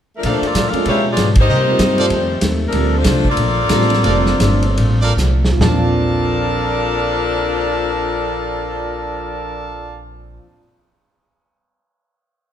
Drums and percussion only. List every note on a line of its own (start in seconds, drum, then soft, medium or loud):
0.23 kick soft
0.23 ride medium
0.43 ride soft
0.55 kick soft
0.55 snare medium
0.55 hi-hat pedal medium
0.55 ride medium
0.73 ride soft
0.85 kick soft
0.85 ride medium
1.17 kick soft
1.17 snare medium
1.17 hi-hat pedal soft
1.17 ride medium
1.35 kick medium
1.35 ride medium
1.79 kick soft
1.79 snare medium
1.79 hi-hat pedal medium
1.79 ride medium
1.98 ride soft
2.10 kick soft
2.10 ride medium
2.41 kick soft
2.41 snare medium
2.41 hi-hat pedal medium
2.41 ride medium
2.72 kick soft
2.72 ride medium
3.04 kick soft
3.04 snare medium
3.04 hi-hat pedal medium
3.04 ride medium
3.25 kick soft
3.37 kick soft
3.37 ride medium
3.69 kick soft
3.69 snare medium
3.69 hi-hat pedal medium
3.69 ride medium
3.81 snare soft
3.90 snare soft
3.90 ride soft
4.04 kick soft
4.04 ride medium
4.26 snare soft
4.40 kick soft
4.40 snare medium
4.40 hi-hat pedal medium
4.40 ride medium
4.62 ride soft
4.77 kick soft
4.77 ride medium
5.18 snare soft
5.18 hi-hat pedal medium
5.45 snare medium
5.61 snare medium
5.61 floor tom medium